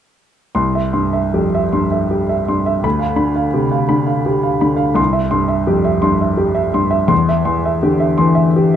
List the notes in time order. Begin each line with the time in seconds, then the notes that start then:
0.55 C2 C6
0.75 E5
0.93 G2 C6
1.13 E5
1.34 F2 G4
1.55 E5
1.73 G2 C6
1.91 E5
2.11 G4
2.29 E5
2.48 G2 C6
2.66 E5
2.83 D2 B5
2.99 F5
3.16 D3 B5
3.36 F5
3.54 C3 G4
3.72 F5
3.89 D3 B5
4.07 F5
4.26 G4
4.43 F5
4.61 D3 B5
4.77 F5
4.95 C2 C6
5.13 E5
5.31 G2 C6
5.48 E5
5.67 F2 G4
5.85 E5
6.02 G2 C6
6.21 E5
6.37 G4
6.55 E5
6.74 G2 C6
6.91 E5
7.08 E2 C6
7.29 E5
7.45 E3 C6
7.65 E5
7.83 D3 G4
8.00 E5
8.18 E3 C6
8.35 E5
8.56 G4